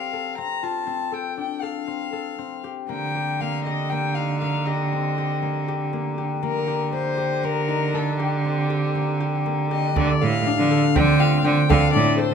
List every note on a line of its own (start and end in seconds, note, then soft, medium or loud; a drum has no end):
0.00 0.38 C4 soft
0.00 0.67 D4 soft
0.00 1.48 G4 medium
0.00 0.13 A4 soft
0.00 0.38 F5 medium
0.13 1.11 A4 soft
0.38 0.86 C4 soft
0.38 0.65 A#5 medium
0.63 3.15 F4 medium
0.63 1.15 A5 medium
0.87 1.87 C4 medium
1.12 1.62 A4 medium
1.12 1.38 G5 medium
1.37 4.17 D4 soft
1.37 1.64 G5 medium
1.62 2.12 A4 soft
1.62 2.64 F5 soft
1.87 2.38 C4 soft
2.12 2.95 A4 medium
2.38 4.92 C4 soft
2.64 3.15 G4 soft
2.89 6.43 D3 medium
2.89 3.40 A#3 medium
2.89 3.42 G5 medium
3.15 3.66 G4 soft
3.40 3.91 A#3 medium
3.40 3.64 F5 medium
3.64 4.66 G4 soft
3.64 3.91 D#5 medium
3.90 4.41 A#3 medium
3.90 4.16 G5 medium
4.15 6.88 D#4 soft
4.15 4.40 F5 medium
4.40 5.42 A#3 medium
4.40 4.67 F5 medium
4.66 5.18 G4 medium
4.66 5.67 D#5 soft
4.92 7.92 C4 soft
5.18 5.68 G4 medium
5.42 5.93 A#3 soft
5.68 6.17 G4 medium
5.93 6.42 A#3 soft
6.18 6.67 G4 medium
6.43 9.92 D3 medium
6.43 6.92 A#3 medium
6.43 6.90 A#4 medium
6.68 7.17 G4 soft
6.92 7.43 A#3 medium
6.92 7.46 C5 medium
7.17 8.19 G4 medium
7.44 7.93 A#3 medium
7.44 7.96 A#4 medium
7.68 10.39 D#4 medium
7.94 8.95 A#3 medium
7.94 8.19 A4 medium
8.19 8.70 G4 medium
8.19 9.42 G4 medium
8.45 10.95 C4 soft
8.70 9.20 G4 medium
8.95 9.45 A#3 medium
9.20 9.71 G4 medium
9.46 10.02 A#3 medium
9.71 12.06 G4 medium
9.71 9.97 D#5 medium
9.96 10.07 D3 medium
9.96 12.34 A3 medium
9.96 10.23 D5 medium
9.96 frame drum medium
10.21 10.43 A2 medium
10.21 10.70 A4 medium
10.21 10.97 F5 medium
10.47 11.93 D4 medium
10.58 10.79 D3 medium
10.71 11.69 A4 medium
10.95 11.38 D3 medium
10.95 11.44 C4 medium
10.95 11.21 G5 medium
10.95 frame drum medium
11.19 12.34 F4 medium
11.19 11.46 F5 medium
11.45 11.56 D3 medium
11.45 12.34 C4 medium
11.45 11.72 G5 medium
11.69 11.80 D3 medium
11.69 12.18 A4 medium
11.69 11.93 F5 medium
11.69 frame drum medium
11.93 12.15 A2 medium
11.93 12.34 D4 medium
11.93 12.17 D5 medium
12.18 12.34 A4 medium
12.18 12.34 C5 medium